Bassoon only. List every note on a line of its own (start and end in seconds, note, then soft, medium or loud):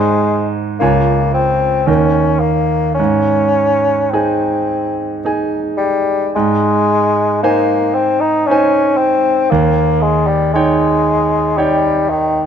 0.00 0.53 G#3 medium
0.80 1.29 A#3 medium
1.34 1.89 C4 medium
1.87 2.42 C#4 medium
2.40 2.94 A#3 medium
2.95 4.12 C#4 medium
4.11 5.22 C4 medium
5.77 6.29 G3 medium
6.35 7.39 G#3 loud
7.43 7.96 A#3 medium
7.95 8.22 C4 medium
8.21 8.48 D#4 medium
8.47 8.99 C#4 loud
8.97 9.52 C4 medium
9.51 10.03 A#3 medium
10.02 10.28 G#3 medium
10.27 10.52 G3 medium
10.54 11.60 G#3 medium
11.58 12.11 G3 medium
12.10 12.42 D#3 medium